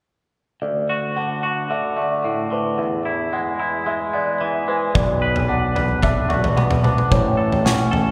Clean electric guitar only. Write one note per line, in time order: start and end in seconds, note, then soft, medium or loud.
0.62 1.97 D2 medium
0.89 1.43 F#4 soft
1.17 1.69 D3 soft
1.43 2.81 F#4 medium
1.70 2.50 D3 medium
1.97 2.78 A3 soft
2.25 2.79 A2 medium
2.51 2.79 D3 soft
2.78 4.14 E2 medium
3.05 3.58 E4 medium
3.33 3.85 G#3 soft
3.60 4.95 E4 medium
3.86 4.67 G#3 medium
4.13 4.95 B3 soft
4.41 4.95 E3 medium
4.68 4.95 G#3 medium
4.95 6.30 B2 medium
5.22 5.74 B4 medium
5.48 6.01 D4 soft
5.75 7.11 B4 medium
6.02 6.83 D4 medium
6.29 7.11 F#4 soft
6.57 7.11 B3 medium
6.84 7.11 D4 medium
7.11 8.11 A2 medium
7.37 7.90 A4 medium
7.65 8.11 C#4 soft
7.91 8.11 A4 medium